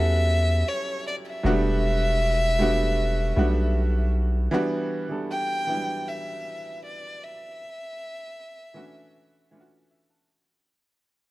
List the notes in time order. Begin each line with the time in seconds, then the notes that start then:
Already playing: E2 F#3 G3 B3 C#4 E4 G4 A4 E5
0.69 C#5
1.07 D5
1.27 E5
1.43 E1 F#3 A3 B3 D4 F#4
1.50 G3
2.59 G3 A3 B3 D4 F#4
3.36 B1 G3 A3 B3 D4 F#4
4.51 E3 G3 B3 D4 F#4
5.09 E3 G3 B3 D4 A4
5.31 G5
5.67 E3 F#3 B3 D4 E4
5.74 G3
6.08 E5
6.85 D5
7.24 E5
8.74 E3 A3 C#4 D4 F#4
9.51 E3 A3 C#4 D4 F4
9.60 F#4
9.91 E5
10.10 A5